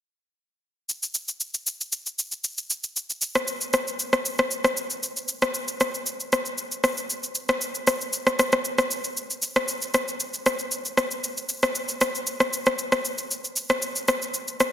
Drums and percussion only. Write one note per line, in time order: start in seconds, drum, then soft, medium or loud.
0.89 shaker medium
1.03 shaker medium
1.14 shaker medium
1.28 shaker medium
1.41 shaker medium
1.54 shaker medium
1.67 shaker loud
1.81 shaker soft
1.92 shaker medium
2.06 shaker soft
2.19 shaker loud
2.32 shaker soft
2.44 shaker medium
2.58 shaker soft
2.70 shaker medium
2.84 shaker soft
2.96 shaker medium
3.10 shaker soft
3.22 shaker medium
3.35 cross-stick medium
3.35 shaker medium
3.48 shaker medium
3.61 shaker medium
3.73 cross-stick medium
3.73 shaker loud
3.88 shaker soft
3.99 shaker medium
4.13 cross-stick medium
4.13 shaker soft
4.26 shaker medium
4.38 cross-stick medium
4.38 shaker soft
4.51 shaker medium
4.64 cross-stick medium
4.64 shaker medium
4.77 shaker medium
4.90 shaker soft
5.03 shaker medium
5.17 shaker medium
5.28 shaker medium
5.42 cross-stick loud
5.42 shaker medium
5.54 shaker medium
5.68 shaker medium
5.80 cross-stick medium
5.80 shaker loud
5.94 shaker soft
6.06 shaker medium
6.20 shaker soft
6.33 cross-stick medium
6.33 shaker loud
6.46 shaker soft
6.58 shaker medium
6.72 shaker medium
6.84 cross-stick medium
6.84 shaker medium
6.97 shaker medium
7.10 shaker medium
7.23 shaker soft
7.35 shaker medium
7.49 cross-stick loud
7.49 shaker medium
7.61 shaker medium
7.75 shaker medium
7.87 cross-stick medium
7.87 shaker loud
8.01 shaker soft
8.13 shaker medium
8.27 cross-stick medium
8.27 shaker soft
8.39 cross-stick medium
8.39 shaker loud
8.52 cross-stick medium
8.52 shaker soft
8.65 shaker medium
8.78 cross-stick medium
8.78 shaker soft
8.91 shaker medium
9.04 shaker soft
9.17 shaker medium
9.30 shaker soft
9.42 shaker medium
9.56 cross-stick loud
9.56 shaker medium
9.68 shaker medium
9.82 shaker medium
9.94 cross-stick medium
9.94 shaker loud
10.08 shaker soft
10.20 shaker medium
10.34 shaker soft
10.46 cross-stick medium
10.46 shaker loud
10.59 shaker soft
10.72 shaker medium
10.85 shaker soft
10.97 cross-stick medium
10.97 shaker medium
11.11 shaker medium
11.24 shaker medium
11.37 shaker soft
11.49 shaker medium
11.63 cross-stick loud
11.63 shaker medium
11.75 shaker medium
11.89 shaker medium
12.01 cross-stick loud
12.01 shaker loud
12.15 shaker medium
12.27 shaker medium
12.40 cross-stick medium
12.40 shaker soft
12.53 shaker medium
12.66 cross-stick medium
12.66 shaker soft
12.79 shaker medium
12.92 cross-stick medium
12.92 shaker medium
13.05 shaker medium
13.18 shaker medium
13.31 shaker medium
13.44 shaker soft
13.56 shaker medium
13.70 cross-stick loud
13.70 shaker medium
13.82 shaker medium
13.96 shaker medium
14.08 cross-stick loud
14.08 shaker loud
14.22 shaker soft
14.34 shaker medium
14.48 shaker soft
14.60 cross-stick medium
14.60 shaker loud